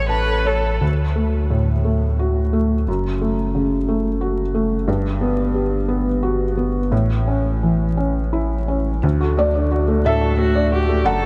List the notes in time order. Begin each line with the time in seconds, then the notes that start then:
Already playing: A1 A3 A4 C#5 E5
0.09 B4 A5
0.26 A4
0.44 A4 C#5
0.63 E5
0.81 D2
1.16 A3
1.50 A2
1.85 A3
2.19 F#4
2.53 A3
2.87 F#1 F#2
3.21 A3
3.55 C#3
3.88 A3
4.21 F#4
4.55 A3
4.87 G1 G2
5.21 B3
5.54 G3
5.88 B3
6.23 F#4
6.57 B3
6.91 A1 A2
7.28 C#4
7.63 E3
7.97 C#4
8.33 E4
8.68 C#4
9.02 D2 D4
9.20 F#4 A4
9.37 A3 D5
9.54 D4 D5
9.72 F#4
9.88 A3 A4
10.05 A2 D4 A4 E5
10.21 F#4 A4
10.39 A3 F#4
10.56 D4 D5
10.72 F#4 G4
10.89 A3
11.04 F#1 F#2 F#4 A4 F#5
11.22 F#4